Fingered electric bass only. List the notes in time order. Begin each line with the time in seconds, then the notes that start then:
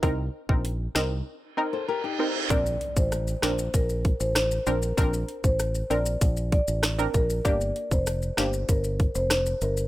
0.03 C2
0.49 A#1
0.96 C2
2.50 A#1
2.97 A1
3.43 A#1
3.74 A#1
4.20 A1
4.67 A#1
4.98 A#1
5.44 A1
5.91 A#1
6.21 A#1
6.68 A1
7.14 A#1
7.45 G1
7.91 F1
8.38 G1
8.69 G1
9.15 F1
9.62 G1